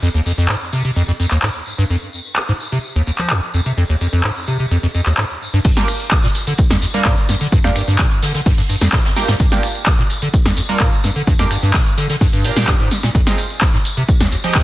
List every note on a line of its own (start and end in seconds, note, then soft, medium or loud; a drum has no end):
0.02 0.09 F2 loud
0.02 tambourine soft
0.14 0.21 D#2 loud
0.14 tambourine soft
0.26 0.32 F2 medium
0.26 tambourine medium
0.38 0.47 F2 medium
0.38 tambourine soft
0.49 0.56 G#2 medium
0.49 clap loud
0.49 tambourine soft
0.61 tambourine soft
0.73 0.83 C3 medium
0.73 tambourine medium
0.85 0.91 C3 medium
0.85 tambourine soft
0.96 1.03 F2 medium
0.96 tambourine soft
1.08 1.12 F2 loud
1.08 tambourine soft
1.20 1.26 F2 medium
1.20 tambourine medium
1.31 1.38 D#2 loud
1.31 clap soft
1.31 tambourine soft
1.42 1.50 G#2 medium
1.42 clap loud
1.42 tambourine soft
1.56 tambourine soft
1.66 tambourine medium
1.78 1.85 G2 loud
1.78 tambourine soft
1.90 1.96 F2 medium
1.90 tambourine soft
2.02 tambourine soft
2.13 tambourine medium
2.25 tambourine soft
2.36 clap loud
2.36 tambourine soft
2.48 2.52 G#2 medium
2.48 tambourine soft
2.60 tambourine medium
2.72 2.78 C3 medium
2.72 tambourine soft
2.84 tambourine soft
2.95 3.02 D#2 medium
2.95 tambourine soft
3.07 3.11 D#2 medium
3.07 tambourine medium
3.18 3.32 F3 medium
3.18 clap soft
3.18 tambourine soft
3.30 3.40 F2 medium
3.30 clap loud
3.30 tambourine soft
3.42 tambourine soft
3.54 3.61 F2 medium
3.54 tambourine medium
3.65 3.72 C3 medium
3.65 tambourine soft
3.77 3.84 F2 medium
3.77 tambourine soft
3.89 3.96 D#2 loud
3.89 tambourine soft
4.01 4.07 F2 medium
4.01 tambourine medium
4.13 4.22 F2 loud
4.13 tambourine soft
4.24 4.31 G#2 medium
4.24 clap loud
4.24 tambourine soft
4.36 tambourine soft
4.47 4.58 C3 medium
4.47 tambourine medium
4.60 4.66 C3 medium
4.60 tambourine soft
4.70 4.78 F2 medium
4.70 tambourine soft
4.83 4.87 F2 medium
4.83 tambourine soft
4.94 5.01 F2 medium
4.94 tambourine medium
5.06 5.13 D#2 loud
5.06 clap soft
5.06 tambourine soft
5.17 5.25 G#2 medium
5.17 clap loud
5.17 tambourine soft
5.29 tambourine soft
5.42 tambourine medium
5.53 5.60 G2 loud
5.53 tambourine soft
5.65 5.71 G2 medium
5.65 kick loud
5.65 closed hi-hat medium
5.65 crash loud
5.65 tambourine medium
5.65 shaker medium
5.77 5.87 A#3 medium
5.77 5.87 D4 medium
5.77 5.87 F4 medium
5.77 5.87 G4 medium
5.77 snare medium
5.77 closed hi-hat soft
5.77 tambourine soft
5.88 finger snap medium
5.88 open hi-hat loud
5.88 tambourine medium
5.88 shaker medium
6.00 closed hi-hat soft
6.00 tambourine soft
6.11 kick loud
6.11 snare loud
6.11 clap loud
6.11 closed hi-hat medium
6.11 tambourine soft
6.11 shaker medium
6.24 6.27 A#2 loud
6.24 snare soft
6.24 tambourine soft
6.35 open hi-hat loud
6.35 tambourine loud
6.35 shaker medium
6.46 6.53 D3 medium
6.46 closed hi-hat medium
6.46 tambourine soft
6.58 kick loud
6.58 closed hi-hat medium
6.58 tambourine soft
6.58 shaker loud
6.70 6.77 F2 loud
6.70 snare soft
6.70 snare medium
6.70 closed hi-hat medium
6.70 tambourine soft
6.82 6.86 F2 medium
6.82 open hi-hat loud
6.82 tambourine medium
6.82 shaker medium
6.94 7.07 G3 medium
6.94 7.11 A#3 medium
6.94 7.11 D4 medium
6.94 7.11 F4 medium
6.94 7.11 A#4 medium
6.94 closed hi-hat soft
6.94 tambourine soft
7.05 7.15 G2 medium
7.05 kick loud
7.05 snare loud
7.05 clap loud
7.05 closed hi-hat medium
7.05 tambourine soft
7.05 shaker medium
7.17 closed hi-hat soft
7.17 tambourine soft
7.29 7.35 G2 medium
7.29 snare soft
7.29 open hi-hat loud
7.29 tambourine medium
7.29 shaker medium
7.41 7.47 D3 medium
7.41 closed hi-hat soft
7.41 tambourine soft
7.52 7.59 G2 loud
7.52 kick loud
7.52 closed hi-hat medium
7.52 tambourine medium
7.52 shaker medium
7.64 7.71 F2 loud
7.64 7.75 A#3 medium
7.64 7.75 D4 medium
7.64 7.75 F4 medium
7.64 7.75 G4 medium
7.64 finger snap medium
7.64 snare medium
7.64 closed hi-hat soft
7.64 tambourine soft
7.76 7.82 G2 medium
7.76 finger snap medium
7.76 open hi-hat loud
7.76 tambourine medium
7.76 shaker medium
7.88 7.97 G2 loud
7.88 closed hi-hat soft
7.88 tambourine soft
7.99 8.06 A#2 medium
7.99 kick loud
7.99 snare loud
7.99 clap loud
7.99 closed hi-hat medium
7.99 shaker medium
8.11 closed hi-hat soft
8.11 tambourine soft
8.23 8.33 D3 medium
8.23 snare soft
8.23 open hi-hat loud
8.23 tambourine loud
8.23 shaker medium
8.34 8.41 D3 medium
8.34 snare soft
8.34 closed hi-hat medium
8.34 tambourine soft
8.46 8.53 G2 loud
8.46 kick loud
8.46 closed hi-hat medium
8.46 open hi-hat medium
8.58 8.62 G2 loud
8.58 closed hi-hat medium
8.58 tambourine soft
8.69 8.76 G2 medium
8.69 open hi-hat loud
8.69 tambourine loud
8.69 shaker medium
8.81 8.88 F2 loud
8.81 snare medium
8.81 open hi-hat medium
8.81 tambourine soft
8.92 9.00 A#2 medium
8.92 kick loud
8.92 snare loud
8.92 clap loud
8.92 closed hi-hat medium
8.92 tambourine medium
8.92 shaker medium
9.05 snare medium
9.05 closed hi-hat soft
9.05 tambourine soft
9.05 shaker medium
9.16 9.27 A#3 loud
9.16 9.27 D4 medium
9.16 9.27 F4 medium
9.16 9.27 G4 loud
9.16 snare soft
9.16 snare loud
9.16 open hi-hat loud
9.16 tambourine medium
9.16 shaker medium
9.28 9.35 G#2 loud
9.28 snare loud
9.28 snare soft
9.28 closed hi-hat soft
9.28 tambourine soft
9.28 shaker medium
9.39 9.46 G2 medium
9.39 kick loud
9.39 closed hi-hat medium
9.39 tambourine medium
9.39 shaker medium
9.51 9.62 A#3 medium
9.51 9.62 D4 medium
9.51 9.62 F4 medium
9.51 9.62 G4 loud
9.51 snare medium
9.51 closed hi-hat soft
9.51 tambourine soft
9.63 finger snap medium
9.63 open hi-hat loud
9.63 tambourine loud
9.63 shaker medium
9.75 closed hi-hat soft
9.75 tambourine soft
9.86 kick loud
9.86 snare loud
9.86 clap loud
9.86 closed hi-hat medium
9.86 tambourine medium
9.86 shaker medium
9.98 10.02 A#2 loud
9.98 snare soft
9.98 tambourine soft
10.10 open hi-hat loud
10.10 tambourine medium
10.10 shaker medium
10.22 10.28 D3 medium
10.22 closed hi-hat medium
10.22 tambourine soft
10.34 kick loud
10.34 closed hi-hat medium
10.34 tambourine medium
10.34 shaker medium
10.46 10.52 F2 loud
10.46 snare medium
10.46 snare soft
10.46 closed hi-hat medium
10.46 tambourine soft
10.57 10.61 F2 medium
10.57 open hi-hat loud
10.57 tambourine medium
10.57 shaker medium
10.69 10.82 G3 medium
10.69 10.86 A#3 medium
10.69 10.86 D4 medium
10.69 10.86 F4 medium
10.69 10.86 A#4 medium
10.69 closed hi-hat soft
10.69 tambourine soft
10.80 10.90 G2 medium
10.80 kick loud
10.80 snare loud
10.80 clap loud
10.80 closed hi-hat medium
10.80 tambourine medium
10.80 shaker medium
10.92 closed hi-hat soft
10.92 tambourine soft
11.03 11.10 G2 medium
11.03 snare soft
11.03 open hi-hat loud
11.03 tambourine loud
11.03 shaker medium
11.16 11.22 D3 medium
11.16 closed hi-hat soft
11.16 tambourine soft
11.27 11.34 G2 loud
11.27 kick loud
11.27 closed hi-hat medium
11.27 tambourine medium
11.27 shaker medium
11.39 11.46 F2 loud
11.39 11.50 A#3 medium
11.39 11.50 D4 medium
11.39 11.50 F4 medium
11.39 11.50 G4 medium
11.39 finger snap medium
11.39 snare medium
11.39 closed hi-hat soft
11.39 tambourine soft
11.51 11.57 G2 medium
11.51 finger snap medium
11.51 open hi-hat loud
11.51 tambourine loud
11.51 shaker medium
11.62 11.72 G2 loud
11.62 closed hi-hat soft
11.62 tambourine soft
11.73 kick loud
11.73 snare loud
11.73 clap loud
11.73 closed hi-hat medium
11.73 tambourine medium
11.73 shaker medium
11.86 closed hi-hat soft
11.86 tambourine soft
11.98 12.07 D3 medium
11.98 snare soft
11.98 open hi-hat loud
11.98 tambourine medium
11.98 shaker medium
12.10 12.16 D3 medium
12.10 snare soft
12.10 closed hi-hat medium
12.10 tambourine soft
12.21 12.28 G2 loud
12.21 kick loud
12.21 closed hi-hat medium
12.21 open hi-hat medium
12.21 tambourine soft
12.33 12.46 G2 loud
12.33 closed hi-hat soft
12.33 tambourine soft
12.44 12.51 A#2 medium
12.44 12.55 A#3 medium
12.44 12.55 D4 medium
12.44 12.55 F4 medium
12.44 12.55 G4 medium
12.44 open hi-hat loud
12.44 tambourine medium
12.44 shaker medium
12.56 12.66 A#2 medium
12.56 12.67 A#3 loud
12.56 12.67 D4 medium
12.56 12.67 F4 medium
12.56 12.67 G4 loud
12.56 snare medium
12.56 open hi-hat medium
12.56 tambourine soft
12.67 12.75 G2 medium
12.67 kick loud
12.67 snare loud
12.67 clap loud
12.67 closed hi-hat medium
12.67 shaker medium
12.80 12.89 G#2 medium
12.80 closed hi-hat soft
12.80 tambourine soft
12.91 snare soft
12.91 open hi-hat loud
12.91 tambourine loud
12.91 shaker medium
13.03 13.10 A#2 medium
13.03 snare soft
13.03 closed hi-hat soft
13.03 tambourine soft
13.15 13.21 F2 medium
13.15 kick loud
13.15 closed hi-hat medium
13.15 tambourine medium
13.15 shaker medium
13.26 13.37 G#3 medium
13.26 13.37 C4 medium
13.26 13.37 D#4 medium
13.26 13.37 F4 loud
13.26 snare medium
13.26 closed hi-hat soft
13.26 tambourine soft
13.38 finger snap medium
13.38 open hi-hat loud
13.38 tambourine loud
13.38 shaker medium
13.50 closed hi-hat soft
13.50 tambourine soft
13.61 kick loud
13.61 snare loud
13.61 clap loud
13.61 closed hi-hat medium
13.61 tambourine medium
13.61 shaker medium
13.74 13.77 G#2 loud
13.74 snare soft
13.74 tambourine soft
13.85 open hi-hat loud
13.85 tambourine medium
13.85 shaker medium
13.97 14.03 C3 medium
13.97 closed hi-hat medium
13.97 tambourine soft
14.09 kick loud
14.09 closed hi-hat medium
14.09 tambourine medium
14.09 shaker medium
14.21 14.27 D#2 loud
14.21 snare medium
14.21 snare soft
14.21 closed hi-hat soft
14.21 tambourine soft
14.32 14.36 D#2 medium
14.32 open hi-hat loud
14.32 tambourine medium
14.32 shaker medium
14.44 14.57 F3 medium
14.44 14.61 G#3 medium
14.44 14.61 C4 medium
14.44 14.61 D#4 medium
14.44 14.61 G4 medium
14.44 closed hi-hat soft
14.44 tambourine soft
14.55 14.63 F2 medium
14.55 kick loud
14.55 snare loud
14.55 clap loud
14.55 closed hi-hat medium
14.55 tambourine medium
14.55 shaker medium